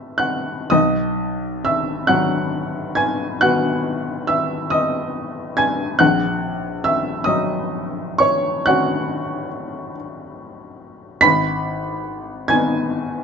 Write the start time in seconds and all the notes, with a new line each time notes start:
Already playing: B1 B3 B4 E5 E6
0.18 F#5 F#6
0.70 B1 D#5 D#6
1.65 E5 E6
2.07 F#3 F#5 F#6
2.95 G#5 G#6
3.41 B3 F#4 F#5 F#6
4.27 E5 E6
4.70 D#5 D#6
5.57 G#5 G#6
5.99 A#1 F#5 F#6
6.84 E5 E6
7.24 F#3 D#5 D#6
8.18 C#5 C#6
8.66 C#4 F#4 F#5 F#6
11.21 G#1 B5 B6
12.48 B3 D#4 G#5 G#6